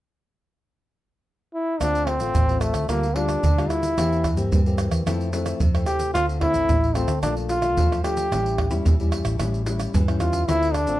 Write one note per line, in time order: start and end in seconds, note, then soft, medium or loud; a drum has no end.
1.54 1.82 E4 medium
1.80 2.20 D2 medium
1.80 2.33 D3 medium
1.80 2.17 A3 medium
1.80 2.18 C4 soft
1.80 2.09 D4 loud
1.80 2.18 F4 medium
1.80 pandeiro medium
1.80 tamborim medium
1.80 shaker medium
1.80 surdo medium
1.95 pandeiro soft
1.95 shaker soft
2.07 2.62 C4 loud
2.07 pandeiro medium
2.07 tamborim medium
2.20 2.32 A1 medium
2.20 2.44 A3 medium
2.20 2.44 C4 medium
2.20 2.44 F4 medium
2.20 pandeiro medium
2.20 shaker medium
2.35 2.70 A1 medium
2.35 2.87 A2 soft
2.35 pandeiro medium
2.35 shaker medium
2.35 surdo loud
2.49 2.85 A3 medium
2.49 2.86 C4 medium
2.49 2.86 F4 medium
2.49 pandeiro soft
2.49 shaker soft
2.60 2.89 A3 medium
2.60 pandeiro medium
2.60 tamborim medium
2.60 shaker medium
2.74 2.86 D2 medium
2.74 pandeiro medium
2.74 tamborim medium
2.74 shaker medium
2.89 3.35 D2 medium
2.89 3.41 D3 medium
2.89 3.05 G3 medium
2.89 3.17 A#3 medium
2.89 3.06 A#3 soft
2.89 3.06 F4 medium
2.89 pandeiro medium
2.89 tamborim medium
2.89 shaker medium
2.89 surdo medium
3.03 pandeiro soft
3.03 shaker soft
3.15 3.42 G3 medium
3.15 3.42 A#3 medium
3.15 3.70 D4 loud
3.15 3.42 F4 medium
3.15 pandeiro medium
3.29 pandeiro soft
3.29 tamborim medium
3.29 shaker medium
3.43 3.67 D2 medium
3.43 3.95 D3 medium
3.43 pandeiro medium
3.43 shaker medium
3.43 surdo loud
3.57 3.94 G3 medium
3.57 3.94 A#3 medium
3.57 3.94 F4 medium
3.57 pandeiro soft
3.57 tamborim medium
3.57 shaker soft
3.69 4.51 E4 medium
3.69 pandeiro medium
3.69 tamborim medium
3.69 shaker medium
3.83 pandeiro medium
3.83 shaker medium
3.98 4.37 E2 medium
3.98 4.49 E3 soft
3.98 4.23 A#3 medium
3.98 4.23 C4 medium
3.98 4.24 G4 medium
3.98 pandeiro medium
3.98 tamborim medium
3.98 shaker medium
3.98 surdo medium
4.13 pandeiro soft
4.13 shaker soft
4.24 pandeiro medium
4.24 tamborim medium
4.24 shaker medium
4.24 surdo medium
4.37 4.49 G2 medium
4.37 4.60 A#3 medium
4.37 4.61 C4 medium
4.37 4.61 G4 medium
4.37 pandeiro medium
4.37 shaker medium
4.52 4.87 G2 medium
4.52 5.04 E3 soft
4.52 pandeiro medium
4.52 shaker medium
4.52 surdo loud
4.66 5.02 A#3 medium
4.66 5.03 C4 medium
4.66 5.03 G4 medium
4.66 pandeiro soft
4.66 shaker soft
4.78 pandeiro medium
4.78 tamborim medium
4.78 shaker medium
4.91 5.03 E2 medium
4.91 pandeiro medium
4.91 tamborim medium
4.91 shaker medium
5.06 5.52 F2 medium
5.06 5.58 F3 medium
5.06 5.29 A3 medium
5.06 5.29 C4 medium
5.06 5.30 E4 medium
5.06 pandeiro medium
5.06 tamborim medium
5.06 shaker medium
5.06 surdo medium
5.21 pandeiro soft
5.21 shaker soft
5.33 5.59 A3 medium
5.33 5.59 C4 medium
5.33 5.59 E4 medium
5.33 pandeiro medium
5.33 shaker medium
5.46 pandeiro medium
5.46 tamborim medium
5.46 shaker medium
5.60 5.83 F2 medium
5.60 6.12 C3 medium
5.60 pandeiro medium
5.60 shaker medium
5.60 surdo loud
5.75 6.11 A3 medium
5.75 6.11 C4 soft
5.75 6.11 E4 medium
5.75 pandeiro soft
5.75 tamborim medium
5.75 shaker soft
5.86 6.12 G4 medium
5.86 pandeiro medium
5.86 tamborim medium
5.86 shaker medium
5.99 pandeiro medium
5.99 shaker medium
6.14 6.54 D2 medium
6.14 6.66 D3 medium
6.14 6.38 A3 medium
6.14 6.38 C4 medium
6.14 6.26 F4 loud
6.14 6.38 F4 medium
6.14 pandeiro medium
6.14 tamborim medium
6.14 shaker medium
6.14 surdo medium
6.29 pandeiro soft
6.29 shaker soft
6.41 6.77 A3 soft
6.41 6.77 C4 medium
6.41 6.96 E4 loud
6.41 pandeiro medium
6.41 tamborim medium
6.41 surdo medium
6.54 6.66 A1 medium
6.54 pandeiro medium
6.54 shaker medium
6.69 7.03 A1 medium
6.69 7.21 A2 soft
6.69 pandeiro medium
6.69 shaker medium
6.69 surdo loud
6.84 pandeiro soft
6.84 shaker soft
6.95 7.12 A3 medium
6.95 7.22 C4 medium
6.95 7.12 C4 medium
6.95 7.12 F4 medium
6.95 pandeiro medium
6.95 tamborim medium
6.95 shaker medium
7.08 7.20 D2 medium
7.08 pandeiro medium
7.08 tamborim medium
7.08 shaker medium
7.23 7.77 A#1 medium
7.23 7.75 A#2 medium
7.23 7.60 A3 soft
7.23 7.35 D4 medium
7.23 7.60 D4 soft
7.23 7.60 F4 medium
7.23 pandeiro medium
7.23 tamborim medium
7.23 shaker medium
7.23 surdo medium
7.37 pandeiro soft
7.37 shaker soft
7.49 8.00 F4 loud
7.49 pandeiro medium
7.49 shaker medium
7.62 7.99 A3 medium
7.62 7.99 D4 medium
7.62 7.99 F4 medium
7.62 pandeiro medium
7.62 tamborim medium
7.62 shaker medium
7.77 8.00 E2 medium
7.77 8.29 F3 medium
7.77 pandeiro medium
7.77 shaker medium
7.77 surdo loud
7.92 pandeiro soft
7.92 tamborim medium
7.92 shaker soft
8.03 8.29 A3 medium
8.03 8.29 D4 medium
8.03 8.29 F4 medium
8.03 8.81 G4 medium
8.03 pandeiro medium
8.03 tamborim medium
8.03 shaker medium
8.17 pandeiro medium
8.17 shaker medium
8.31 8.71 A1 medium
8.31 8.83 A2 medium
8.31 8.68 G3 medium
8.31 8.68 C#4 soft
8.31 8.68 E4 medium
8.31 pandeiro medium
8.31 tamborim medium
8.31 shaker medium
8.31 surdo medium
8.46 pandeiro soft
8.46 shaker soft
8.58 pandeiro medium
8.58 tamborim medium
8.58 surdo medium
8.71 8.83 E2 medium
8.71 8.94 G3 medium
8.71 8.94 C#4 medium
8.71 8.94 E4 medium
8.71 pandeiro medium
8.71 shaker medium
8.85 9.20 E2 medium
8.85 9.37 E3 soft
8.85 pandeiro medium
8.85 shaker medium
8.85 surdo loud
9.00 9.36 G3 medium
9.00 9.36 C#4 soft
9.00 9.36 E4 medium
9.00 pandeiro soft
9.00 shaker soft
9.12 pandeiro medium
9.12 tamborim medium
9.12 shaker medium
9.25 9.37 A1 medium
9.25 pandeiro medium
9.25 tamborim medium
9.25 shaker medium
9.40 9.86 A1 medium
9.40 9.91 A2 soft
9.40 9.63 G3 medium
9.40 9.63 C#4 medium
9.40 9.63 E4 medium
9.40 pandeiro medium
9.40 tamborim medium
9.40 shaker medium
9.40 surdo medium
9.54 pandeiro soft
9.54 shaker soft
9.66 10.03 G3 medium
9.66 10.03 C#4 medium
9.66 10.03 E4 medium
9.66 pandeiro medium
9.66 shaker medium
9.80 pandeiro medium
9.80 tamborim medium
9.80 shaker medium
9.94 10.18 G2 medium
9.94 10.45 E3 medium
9.94 pandeiro medium
9.94 shaker medium
9.94 surdo loud
10.08 10.44 G3 soft
10.08 10.44 C#4 medium
10.08 10.44 E4 medium
10.08 pandeiro soft
10.08 tamborim medium
10.08 shaker soft
10.20 10.45 E2 medium
10.20 10.49 F4 medium
10.20 pandeiro medium
10.20 tamborim medium
10.20 shaker medium
10.33 pandeiro medium
10.33 shaker medium
10.47 10.87 D2 medium
10.47 10.99 D3 medium
10.47 10.73 A3 medium
10.47 10.74 C4 medium
10.47 10.75 E4 loud
10.47 10.74 F4 medium
10.47 pandeiro medium
10.47 tamborim medium
10.47 shaker medium
10.47 surdo medium
10.63 pandeiro soft
10.63 shaker soft
10.73 11.00 D4 loud
10.73 pandeiro medium
10.73 tamborim medium
10.73 shaker medium
10.87 10.99 A1 medium
10.87 11.00 A3 medium
10.87 11.00 C4 medium
10.87 11.00 F4 medium
10.87 pandeiro soft
10.87 shaker medium